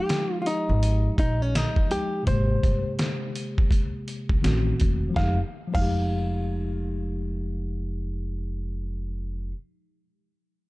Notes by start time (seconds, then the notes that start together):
Already playing: F3 G#3 D#4 G4
0.09 snare, closed hi-hat
0.42 F4
0.46 D#4, closed hi-hat
0.69 G#1
0.83 closed hi-hat
1.18 A#1 D#4, kick, closed hi-hat
1.42 C#4
1.55 D#4, snare, closed hi-hat
1.76 kick
1.89 F3 G#3 D#4 G4, closed hi-hat
2.23 B2 G#3, kick, closed hi-hat
2.27 G#1 C3 A#3 G4 C5
2.63 G1, kick, closed hi-hat
2.99 snare, closed hi-hat
3.36 closed hi-hat
3.58 kick
3.71 kick, closed hi-hat
4.08 closed hi-hat
4.29 C2, kick
4.42 A1 D#3 A3 C4 F#4, snare, closed hi-hat
4.80 E1, kick, closed hi-hat
5.09 F3
5.14 F1 G#3 F5, kick, snare
5.18 D#4
5.23 G4
5.68 F3
5.72 F1 G#3 F5, kick, crash
5.77 D#4
5.81 G4